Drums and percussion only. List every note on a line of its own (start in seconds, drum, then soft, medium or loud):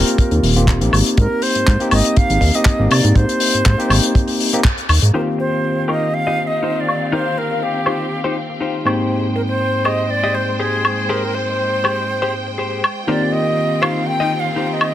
0.07 closed hi-hat medium
0.18 kick loud
0.18 closed hi-hat medium
0.31 closed hi-hat soft
0.43 open hi-hat medium
0.57 closed hi-hat medium
0.67 kick loud
0.67 clap loud
0.67 closed hi-hat medium
0.81 closed hi-hat medium
0.93 open hi-hat loud
0.93 high woodblock medium
1.06 closed hi-hat medium
1.17 kick loud
1.17 closed hi-hat medium
1.42 open hi-hat medium
1.55 closed hi-hat medium
1.67 kick loud
1.67 clap loud
1.67 closed hi-hat medium
1.80 closed hi-hat medium
1.91 open hi-hat loud
1.91 high woodblock medium
2.05 closed hi-hat medium
2.16 kick loud
2.16 closed hi-hat medium
2.30 closed hi-hat medium
2.41 kick medium
2.41 open hi-hat loud
2.54 closed hi-hat medium
2.65 kick loud
2.65 clap loud
2.65 closed hi-hat medium
2.91 open hi-hat loud
2.91 high woodblock medium
3.05 closed hi-hat medium
3.16 kick loud
3.16 closed hi-hat medium
3.29 closed hi-hat medium
3.40 open hi-hat loud
3.53 closed hi-hat medium
3.65 kick loud
3.65 clap loud
3.65 closed hi-hat medium
3.80 closed hi-hat medium
3.90 open hi-hat loud
3.90 high woodblock medium
4.03 closed hi-hat medium
4.15 kick loud
4.15 closed hi-hat medium
4.28 open hi-hat medium
4.40 open hi-hat loud
4.53 closed hi-hat medium
4.64 kick loud
4.64 clap loud
4.64 closed hi-hat medium
4.78 closed hi-hat medium
4.89 open hi-hat loud
4.89 high woodblock medium
5.03 closed hi-hat medium
5.89 high woodblock medium
6.88 high woodblock medium
7.86 high woodblock medium
8.87 high woodblock medium
9.85 high woodblock medium
10.85 high woodblock medium
11.85 high woodblock medium
12.84 high woodblock medium
13.83 high woodblock medium
14.81 high woodblock medium